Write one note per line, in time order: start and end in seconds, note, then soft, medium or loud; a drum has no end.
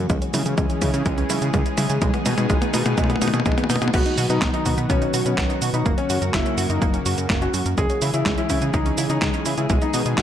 0.10 0.19 C#2 loud
0.10 2.00 E3 medium
0.10 3.90 G#3 medium
0.10 0.21 G#3 loud
0.10 2.00 C#4 medium
0.10 3.90 G#4 medium
0.10 kick loud
0.10 closed hi-hat medium
0.10 mid tom medium
0.10 cabasa soft
0.22 0.32 C#4 medium
0.22 closed hi-hat soft
0.22 cabasa soft
0.34 0.43 C#3 loud
0.34 0.44 E4 medium
0.34 open hi-hat loud
0.34 mid tom medium
0.34 cabasa medium
0.46 0.55 C#3 medium
0.46 0.57 G#4 medium
0.46 closed hi-hat soft
0.46 cabasa soft
0.58 0.67 C#2 medium
0.58 0.69 G#3 loud
0.58 kick loud
0.58 closed hi-hat medium
0.58 mid tom medium
0.58 cabasa soft
0.70 0.80 C#4 medium
0.70 closed hi-hat soft
0.70 cabasa soft
0.82 0.91 C#3 loud
0.82 0.92 E4 loud
0.82 kick medium
0.82 open hi-hat medium
0.82 mid tom medium
0.82 cabasa medium
0.94 1.03 C#3 medium
0.94 1.05 G#4 medium
0.94 closed hi-hat soft
0.94 cabasa soft
1.06 1.24 C#2 loud
1.06 1.17 G#3 loud
1.06 kick loud
1.06 closed hi-hat medium
1.06 mid tom medium
1.06 cabasa soft
1.18 1.28 C#4 medium
1.18 closed hi-hat soft
1.18 cabasa soft
1.30 1.39 C#3 medium
1.30 1.40 E4 loud
1.30 open hi-hat loud
1.30 mid tom medium
1.30 cabasa medium
1.42 1.51 C#3 medium
1.42 1.53 G#4 medium
1.42 closed hi-hat soft
1.42 cabasa soft
1.54 1.63 C#2 loud
1.54 1.65 G#3 loud
1.54 kick loud
1.54 closed hi-hat medium
1.54 mid tom medium
1.54 cabasa soft
1.66 1.76 C#4 medium
1.66 closed hi-hat soft
1.66 cabasa soft
1.78 1.87 C#3 medium
1.78 1.88 E4 loud
1.78 open hi-hat medium
1.78 mid tom medium
1.78 cabasa medium
1.90 1.99 C#3 medium
1.90 2.01 G#4 medium
1.90 closed hi-hat soft
1.90 cabasa soft
2.02 2.11 B1 loud
2.02 3.92 D#3 medium
2.02 2.13 G#3 loud
2.02 3.92 B3 medium
2.02 kick loud
2.02 closed hi-hat medium
2.02 mid tom medium
2.02 cabasa soft
2.14 2.24 B3 medium
2.14 closed hi-hat soft
2.14 mid tom medium
2.14 cabasa soft
2.26 2.35 B2 loud
2.26 2.36 D#4 loud
2.26 open hi-hat loud
2.26 mid tom medium
2.26 cabasa medium
2.38 2.47 B2 medium
2.38 2.49 G#4 medium
2.38 closed hi-hat soft
2.38 mid tom medium
2.38 cabasa soft
2.50 2.59 B1 medium
2.50 2.61 G#3 loud
2.50 kick loud
2.50 closed hi-hat medium
2.50 mid tom loud
2.50 cabasa soft
2.62 2.72 B3 medium
2.62 closed hi-hat soft
2.62 mid tom medium
2.62 cabasa soft
2.74 2.83 B2 loud
2.74 2.84 D#4 loud
2.74 open hi-hat medium
2.74 mid tom loud
2.74 cabasa medium
2.86 2.95 B2 medium
2.86 2.97 G#4 medium
2.86 closed hi-hat soft
2.86 mid tom medium
2.86 cabasa soft
2.98 3.16 B1 medium
2.98 3.09 G#3 loud
2.98 kick loud
2.98 closed hi-hat medium
2.98 mid tom loud
2.98 cabasa soft
3.04 mid tom medium
3.10 3.20 B3 medium
3.10 closed hi-hat soft
3.10 mid tom medium
3.10 cabasa soft
3.16 mid tom medium
3.22 3.31 B2 medium
3.22 3.32 D#4 loud
3.22 open hi-hat loud
3.22 mid tom loud
3.22 cabasa medium
3.28 mid tom medium
3.34 3.43 B2 medium
3.34 3.45 G#4 medium
3.34 closed hi-hat soft
3.34 mid tom medium
3.34 cabasa soft
3.40 mid tom medium
3.46 3.55 B1 medium
3.46 3.57 G#3 medium
3.46 kick loud
3.46 closed hi-hat medium
3.46 mid tom loud
3.46 cabasa soft
3.52 mid tom loud
3.58 3.68 B3 medium
3.58 closed hi-hat soft
3.58 mid tom medium
3.58 cabasa soft
3.64 mid tom medium
3.70 3.79 B2 medium
3.70 3.80 D#4 loud
3.70 open hi-hat medium
3.70 mid tom loud
3.70 cabasa medium
3.76 mid tom medium
3.82 3.91 B2 medium
3.82 3.93 G#4 medium
3.82 closed hi-hat soft
3.82 mid tom medium
3.82 cabasa soft
3.88 mid tom loud
3.94 4.03 B1 loud
3.94 5.84 D#3 medium
3.94 7.74 F#3 medium
3.94 5.84 B3 medium
3.94 4.05 B3 loud
3.94 4.17 F#4 loud
3.94 7.74 F#4 medium
3.94 kick loud
3.94 closed hi-hat medium
3.94 crash loud
3.94 cabasa soft
4.06 4.16 D#4 medium
4.06 closed hi-hat soft
4.06 cabasa soft
4.18 4.27 B2 loud
4.18 4.28 F#4 loud
4.18 open hi-hat loud
4.18 cabasa medium
4.30 4.39 B2 medium
4.30 4.45 D#4 medium
4.30 4.41 B4 medium
4.30 closed hi-hat soft
4.30 cabasa soft
4.42 4.51 B1 medium
4.42 4.53 B3 loud
4.42 kick loud
4.42 snare loud
4.42 clap medium
4.42 closed hi-hat medium
4.42 cabasa soft
4.54 4.77 D#4 medium
4.54 4.64 D#4 medium
4.54 closed hi-hat soft
4.54 cabasa soft
4.66 4.75 B2 loud
4.66 4.76 F#4 loud
4.66 kick medium
4.66 open hi-hat medium
4.66 cabasa medium
4.78 4.87 B2 medium
4.78 4.89 B4 medium
4.78 closed hi-hat soft
4.78 cabasa soft
4.90 5.08 B1 medium
4.90 5.01 B3 loud
4.90 5.13 C#4 loud
4.90 kick loud
4.90 closed hi-hat medium
4.90 cabasa soft
5.02 5.12 D#4 medium
5.02 closed hi-hat soft
5.02 cabasa soft
5.14 5.23 B2 medium
5.14 5.24 F#4 loud
5.14 open hi-hat loud
5.14 cabasa medium
5.26 5.35 B2 medium
5.26 5.57 C#4 medium
5.26 5.37 B4 medium
5.26 closed hi-hat soft
5.26 cabasa soft
5.38 5.47 B1 loud
5.38 5.49 B3 loud
5.38 kick loud
5.38 snare loud
5.38 clap loud
5.38 closed hi-hat medium
5.38 cabasa soft
5.50 5.60 D#4 medium
5.50 closed hi-hat soft
5.50 cabasa soft
5.62 5.71 B2 medium
5.62 5.72 F#4 loud
5.62 open hi-hat medium
5.62 cabasa medium
5.74 5.83 B2 loud
5.74 5.89 D#4 medium
5.74 5.85 B4 medium
5.74 closed hi-hat soft
5.74 cabasa soft
5.86 5.95 F#1 loud
5.86 7.76 C#3 medium
5.86 7.76 A#3 medium
5.86 5.97 A#3 loud
5.86 kick loud
5.86 closed hi-hat medium
5.86 cabasa soft
5.98 6.21 C#4 medium
5.98 6.08 C#4 medium
5.98 closed hi-hat soft
5.98 cabasa soft
6.10 6.19 F#2 loud
6.10 6.20 F#4 loud
6.10 open hi-hat loud
6.10 cabasa medium
6.22 6.31 F#2 medium
6.22 6.33 A#4 medium
6.22 closed hi-hat soft
6.22 cabasa soft
6.34 6.43 F#1 medium
6.34 6.45 A#3 loud
6.34 6.57 E4 loud
6.34 kick loud
6.34 snare loud
6.34 clap loud
6.34 closed hi-hat medium
6.34 cabasa soft
6.46 6.56 C#4 medium
6.46 closed hi-hat soft
6.46 cabasa soft
6.58 6.67 F#2 loud
6.58 6.68 F#4 loud
6.58 open hi-hat medium
6.58 cabasa medium
6.70 6.79 F#2 medium
6.70 6.93 D#4 medium
6.70 6.81 A#4 medium
6.70 closed hi-hat soft
6.70 cabasa soft
6.82 7.00 F#1 medium
6.82 6.93 A#3 loud
6.82 kick loud
6.82 closed hi-hat medium
6.82 cabasa soft
6.94 7.04 C#4 medium
6.94 closed hi-hat soft
6.94 cabasa soft
7.06 7.15 F#2 medium
7.06 7.16 F#4 loud
7.06 open hi-hat loud
7.06 cabasa medium
7.18 7.27 F#2 medium
7.18 7.29 A#4 medium
7.18 closed hi-hat soft
7.18 cabasa soft
7.30 7.48 F#1 loud
7.30 7.41 A#3 loud
7.30 kick loud
7.30 snare loud
7.30 clap medium
7.30 closed hi-hat medium
7.30 cabasa soft
7.42 7.52 C#4 medium
7.42 7.65 F#4 medium
7.42 closed hi-hat soft
7.42 cabasa soft
7.54 7.63 F#2 medium
7.54 7.64 F#4 loud
7.54 open hi-hat medium
7.54 cabasa medium
7.66 7.75 F#2 loud
7.66 7.77 A#4 medium
7.66 closed hi-hat soft
7.66 cabasa soft
7.78 7.87 C#2 loud
7.78 9.68 E3 medium
7.78 10.22 G#3 medium
7.78 7.89 G#3 loud
7.78 9.68 C#4 medium
7.78 8.01 G#4 loud
7.78 10.22 G#4 medium
7.78 kick loud
7.78 closed hi-hat medium
7.78 cabasa soft
7.90 8.00 C#4 medium
7.90 closed hi-hat soft
7.90 cabasa soft
8.02 8.11 C#3 loud
8.02 8.12 E4 loud
8.02 open hi-hat loud
8.02 cabasa medium
8.14 8.23 C#3 medium
8.14 8.29 E4 loud
8.14 8.25 G#4 medium
8.14 closed hi-hat soft
8.14 cabasa soft
8.26 8.35 C#2 medium
8.26 8.37 G#3 loud
8.26 kick loud
8.26 snare loud
8.26 clap medium
8.26 closed hi-hat medium
8.26 cabasa soft
8.38 8.48 C#4 medium
8.38 8.61 E4 medium
8.38 closed hi-hat soft
8.38 cabasa soft
8.50 8.59 C#3 loud
8.50 8.60 E4 loud
8.50 kick medium
8.50 open hi-hat medium
8.50 cabasa medium
8.62 8.71 C#3 loud
8.62 8.73 G#4 medium
8.62 closed hi-hat soft
8.62 cabasa soft
8.73 8.92 C#2 loud
8.73 8.85 G#3 loud
8.73 8.97 D#4 loud
8.73 kick loud
8.73 closed hi-hat medium
8.73 cabasa soft
8.86 8.96 C#4 medium
8.86 closed hi-hat soft
8.86 cabasa soft
8.98 9.07 C#3 medium
8.98 9.08 E4 loud
8.98 open hi-hat loud
8.98 cabasa medium
9.10 9.19 C#3 medium
9.10 9.41 D#4 loud
9.10 9.21 G#4 medium
9.10 closed hi-hat soft
9.10 cabasa soft
9.22 9.31 C#2 loud
9.22 9.33 G#3 medium
9.22 kick loud
9.22 snare loud
9.22 clap medium
9.22 closed hi-hat medium
9.22 cabasa soft
9.34 9.44 C#4 medium
9.34 closed hi-hat soft
9.34 cabasa soft
9.46 9.55 C#3 medium
9.46 9.56 E4 loud
9.46 open hi-hat medium
9.46 cabasa medium
9.58 9.67 C#3 loud
9.58 9.73 E4 medium
9.58 9.69 G#4 medium
9.58 closed hi-hat soft
9.58 cabasa soft
9.70 9.79 B1 loud
9.70 10.22 D#3 medium
9.70 9.81 G#3 loud
9.70 10.22 B3 medium
9.70 kick loud
9.70 closed hi-hat medium
9.70 cabasa soft
9.82 9.92 B3 medium
9.82 10.05 D#4 loud
9.82 closed hi-hat soft
9.82 cabasa soft
9.94 10.03 B2 loud
9.94 10.04 D#4 loud
9.94 open hi-hat loud
9.94 cabasa medium
10.06 10.15 B2 medium
10.06 10.17 G#4 medium
10.06 closed hi-hat soft
10.06 cabasa soft
10.18 10.22 B1 medium
10.18 10.22 G#3 loud
10.18 10.22 F#4 medium
10.18 kick loud
10.18 snare loud
10.18 clap medium
10.18 closed hi-hat medium
10.18 cabasa soft